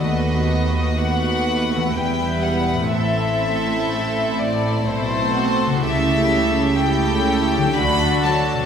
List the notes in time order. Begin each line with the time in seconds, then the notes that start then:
Already playing: D#3 B3 F#4
0.00 D#2 A3 B3 F#4 A4 B4 D#5
0.97 A3 B3 F#4 B4 F#5
1.76 E3
1.81 B3
1.85 E4
1.90 E2 E4 B4
1.94 E1 G3 B3 G5
2.42 F#5
2.73 A2
2.78 C4
2.82 E4
2.87 A2 A3 C4 A4
2.91 A1 E4 A4 E5
4.39 D5
4.86 B1 B2 A3 C4 E4 A4 C5
5.34 F#4
5.66 C#3
5.71 G3
5.75 E4
5.80 G4 A4
5.84 C#2 C#3 A3 E4 E5
6.77 A3 E4 G4 A4 G5
7.57 D3
7.62 F#3
7.66 D4
7.71 A4
7.75 D2 D3 A3 D4 F#4 A4 B5
8.24 F#3 A5
8.54 B2
8.59 G3